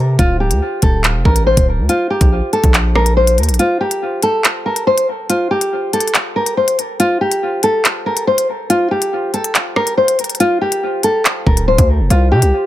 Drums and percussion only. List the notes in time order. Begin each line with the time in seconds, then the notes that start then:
0.19 kick, closed hi-hat
0.51 closed hi-hat
0.82 kick, closed hi-hat
1.04 clap, closed hi-hat
1.25 kick
1.36 closed hi-hat
1.57 kick, closed hi-hat
1.89 closed hi-hat
2.21 kick, closed hi-hat
2.53 closed hi-hat
2.64 kick, closed hi-hat
2.74 clap, closed hi-hat
2.95 cross-stick
3.06 closed hi-hat
3.27 closed hi-hat
3.38 closed hi-hat
3.43 closed hi-hat
3.49 closed hi-hat
3.54 closed hi-hat
3.59 closed hi-hat
3.91 closed hi-hat
4.22 closed hi-hat
4.44 clap, closed hi-hat
4.76 closed hi-hat
4.98 closed hi-hat
5.30 closed hi-hat
5.61 closed hi-hat
5.93 closed hi-hat
6.00 closed hi-hat
6.08 closed hi-hat
6.15 clap, closed hi-hat
6.46 closed hi-hat
6.68 closed hi-hat
6.79 closed hi-hat
7.00 closed hi-hat
7.31 closed hi-hat
7.63 closed hi-hat
7.85 clap, closed hi-hat
8.17 closed hi-hat
8.38 closed hi-hat
8.70 closed hi-hat
9.02 closed hi-hat
9.34 closed hi-hat
9.44 closed hi-hat
9.55 clap, closed hi-hat
9.76 cross-stick
9.87 closed hi-hat
10.08 closed hi-hat
10.19 closed hi-hat
10.24 closed hi-hat
10.29 closed hi-hat
10.35 closed hi-hat
10.40 closed hi-hat
10.72 closed hi-hat
11.03 closed hi-hat
11.25 clap, closed hi-hat
11.47 kick
11.57 closed hi-hat
11.78 kick, closed hi-hat
12.10 closed hi-hat
12.42 closed hi-hat